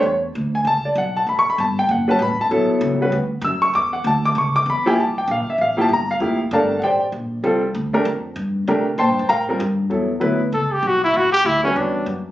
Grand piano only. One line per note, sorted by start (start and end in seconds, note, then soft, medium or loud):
0.06 0.17 C#5 medium
0.55 0.66 G#5 medium
0.67 0.85 A5 loud
0.85 0.96 D5 medium
0.98 1.15 F#5 medium
1.17 1.27 A5 medium
1.29 1.38 B5 medium
1.39 1.48 C#6 loud
1.50 1.59 B5 medium
1.60 1.77 A5 medium
1.79 1.89 G5 medium
1.91 2.08 F#5 medium
2.08 2.18 G3 medium
2.08 2.19 C#4 medium
2.08 2.19 F#4 medium
2.08 2.19 B4 medium
2.08 2.21 A5 medium
2.22 2.39 B5 medium
2.41 2.68 A5 medium
2.51 2.97 F#3 medium
2.51 2.97 B3 medium
2.51 2.97 E4 medium
2.51 2.97 A4 medium
3.01 3.11 G3 medium
3.01 3.11 C#4 medium
3.01 3.12 F#4 medium
3.01 3.12 B4 medium
3.44 3.62 E6 medium
3.62 3.73 C#6 medium
3.75 3.93 D6 loud
3.93 4.04 F#5 medium
4.07 4.24 A5 medium
4.25 4.36 D6 loud
4.38 4.55 C#6 medium
4.56 4.67 D6 loud
4.70 4.86 B5 medium
4.86 4.96 F3 loud
4.86 4.96 A#3 medium
4.86 4.96 E4 medium
4.86 4.97 G4 loud
4.86 4.98 G#5 medium
5.00 5.17 A5 medium
5.18 5.29 G5 medium
5.31 5.48 F5 medium
5.50 5.60 E5 medium
5.61 5.79 F5 medium
5.77 5.88 F3 medium
5.77 5.88 A#3 medium
5.77 5.88 E4 medium
5.77 5.89 G4 medium
5.81 5.91 A5 medium
5.93 6.10 A#5 medium
6.11 6.39 F5 medium
6.20 6.38 F3 medium
6.20 6.38 A#3 medium
6.20 6.38 E4 medium
6.20 6.38 G4 medium
6.53 6.69 A3 medium
6.53 6.69 D4 medium
6.53 6.69 G4 medium
6.53 6.82 A4 medium
6.53 6.70 A#4 medium
6.53 6.81 D5 medium
6.53 6.81 F5 medium
6.53 6.81 A5 medium
6.80 6.82 F#5 medium
6.84 7.02 G4 medium
6.84 7.02 C5 medium
6.84 7.01 D5 medium
6.84 7.01 G5 medium
7.44 7.61 G3 medium
7.44 7.61 C4 medium
7.44 7.61 F4 medium
7.44 7.61 A4 medium
7.93 8.04 A3 medium
7.93 8.05 D4 medium
7.93 8.05 G4 medium
7.93 8.05 A#4 medium
8.68 8.85 A3 medium
8.68 8.85 D4 medium
8.68 8.85 G4 medium
8.68 8.85 A#4 medium
8.99 9.27 C5 medium
8.99 9.28 G5 medium
8.99 9.27 A5 medium
8.99 9.27 C6 medium
9.29 9.41 A#4 medium
9.29 9.41 F5 medium
9.29 9.41 G5 medium
9.29 9.40 A#5 loud
9.49 9.59 G3 medium
9.49 9.59 C4 medium
9.49 9.59 F4 medium
9.49 9.60 A#4 medium
9.90 10.07 F#3 medium
9.90 10.07 B3 medium
9.90 10.08 E4 medium
9.90 10.08 A4 medium
10.20 10.38 F#3 medium
10.20 10.38 B3 medium
10.20 10.38 E4 medium
10.20 10.38 B4 medium
11.64 12.04 G3 medium
11.64 12.05 C#4 medium
11.64 12.05 F#4 medium
11.64 12.05 B4 medium